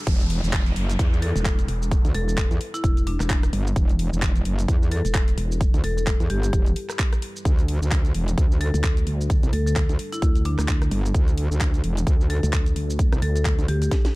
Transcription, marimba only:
1.22 1.35 A4 medium
2.15 2.23 A4 medium
2.28 2.34 A4 medium
2.74 3.05 E4 loud
3.07 3.53 D4 medium
4.92 5.04 A4 medium
5.84 5.92 A4 medium
5.97 6.03 A4 medium
6.30 6.39 G4 medium
6.43 6.50 G4 medium
8.61 8.74 A4 loud
9.53 9.62 A4 medium
9.66 9.73 A4 medium
10.13 10.43 E4 medium
10.45 10.92 D4 medium
12.30 12.43 A4 loud
13.22 13.31 A4 medium
13.36 13.42 A4 medium
13.68 13.77 G4 medium
13.82 13.88 G4 medium

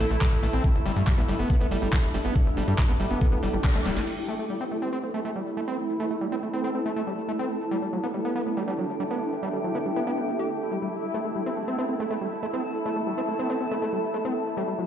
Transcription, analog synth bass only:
0.11 0.16 A1 medium
0.32 0.38 A1 medium
0.43 0.49 A1 loud
0.53 0.59 A1 medium
0.75 0.81 G1 medium
0.86 0.91 G1 loud
0.96 1.02 G2 medium
1.18 1.24 A1 medium
1.28 1.34 G1 loud
1.39 1.45 G1 medium
1.61 1.66 G1 medium
1.71 1.77 G1 loud
1.82 1.88 G1 loud
2.03 2.09 G1 medium
2.14 2.20 G1 loud
2.25 2.31 G1 medium
2.46 2.52 G1 medium
2.57 2.63 G1 loud
2.68 2.74 G2 medium
2.89 2.95 A1 medium
3.00 3.06 G1 loud
3.11 3.16 G1 medium
3.32 3.38 G1 medium
3.43 3.49 G1 loud
3.53 3.59 G1 medium
3.75 3.81 G1 medium
3.86 3.91 D1 loud
3.96 4.02 G1 loud

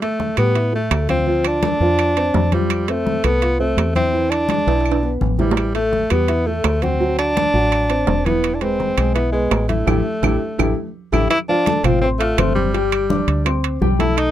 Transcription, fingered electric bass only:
0.38 0.88 A2 medium
0.91 1.75 D2 medium
1.80 2.31 F2 medium
2.35 3.19 F2 medium
3.24 3.74 C2 medium
3.77 4.61 E2 medium
4.67 5.17 B1 medium
5.21 6.05 A1 medium
6.11 6.61 E2 medium
6.65 7.49 D2 medium
7.54 8.04 A1 medium
8.08 8.92 E1 medium
8.98 9.48 B1 medium
9.52 9.85 A1 medium
9.87 10.01 A1 loud
10.23 10.36 A1 loud
10.59 10.73 A1 medium
11.13 11.26 A1 medium
11.84 12.34 A1 medium
12.38 13.22 G1 medium
13.27 13.78 D2 medium
13.82 14.31 B1 medium

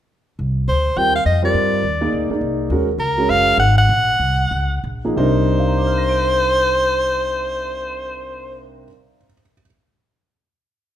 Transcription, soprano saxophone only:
0.69 0.99 C5 medium
0.98 1.15 G5 medium
1.15 1.25 F5 medium
1.26 1.43 D#5 medium
1.45 2.27 D5 medium
3.00 3.32 A#4 medium
3.30 3.59 F5 loud
3.59 3.76 F#5 medium
3.78 4.81 F#5 medium
5.18 8.66 C5 medium

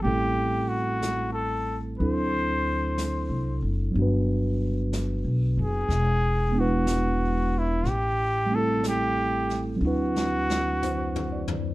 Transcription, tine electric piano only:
0.02 1.99 G3 soft
0.02 1.99 A3 soft
0.02 1.99 C4 soft
0.06 2.00 E4 soft
0.06 2.00 A4 soft
2.00 3.90 F#3 soft
2.00 3.95 C4 soft
2.00 3.95 D4 soft
2.00 3.96 E4 soft
2.00 3.96 A4 soft
3.91 5.88 F#3 soft
3.91 5.89 B3 soft
3.96 5.90 D4 soft
3.96 5.92 F#4 soft
4.02 5.93 B4 medium
6.49 7.82 G#3 soft
6.49 7.83 B3 soft
6.55 7.85 D4 soft
6.55 7.86 E4 soft
6.61 7.88 B4 medium
8.46 9.79 G3 medium
8.46 9.80 A3 soft
8.52 9.77 C4 soft
8.52 9.84 E4 soft
8.58 9.85 A4 medium
9.76 11.74 F#3 soft
9.76 11.74 C4 soft
9.82 11.74 D4 soft
9.82 11.74 E4 soft
9.87 11.74 B4 medium
10.83 11.62 C5 soft
11.32 11.74 D5 soft

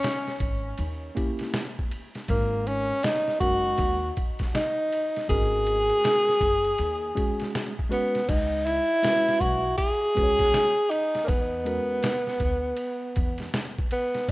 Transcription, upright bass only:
0.40 0.71 G#1 medium
0.79 1.09 D#2 loud
2.29 2.89 G#1 loud
3.41 3.71 F#1 medium
3.79 4.08 D#2 loud
5.30 5.89 G#1 medium
6.41 6.71 F#1 medium
6.79 7.09 D#2 medium
8.29 8.78 C#2 loud
9.41 9.71 B1 medium
10.17 10.47 C#2 medium
11.29 11.77 E2 medium
12.41 12.71 D2 medium
13.17 13.46 E2 medium

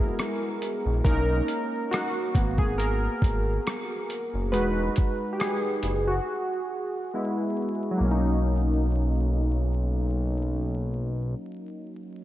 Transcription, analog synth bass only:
0.00 0.11 F#1 medium
0.86 1.02 A#1 medium
1.05 1.41 B1 loud
2.35 3.09 G#1 medium
3.22 3.59 G#1 medium
4.33 4.54 F#1 medium
4.53 4.89 E1 loud
5.83 6.20 F#1 medium
8.00 11.35 B1 medium

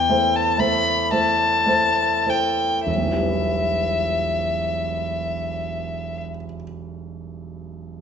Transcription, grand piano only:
0.00 2.91 E2 soft
0.09 0.55 A3 soft
0.09 0.55 E4 soft
0.09 0.55 C5 soft
0.58 1.07 A3 soft
0.58 1.07 E4 soft
0.58 1.07 C5 soft
1.12 1.63 A3 soft
1.12 1.63 E4 soft
1.12 1.63 C5 soft
1.66 2.22 A3 soft
1.66 2.23 E4 soft
1.66 2.23 C5 soft
2.26 2.83 A3 soft
2.26 2.83 E4 soft
2.26 2.83 C5 soft
2.87 6.19 E1 soft
2.96 6.28 B1 soft
3.04 6.36 E3 soft
3.13 6.45 G3 soft
3.22 6.54 B3 soft
3.31 6.63 E4 soft

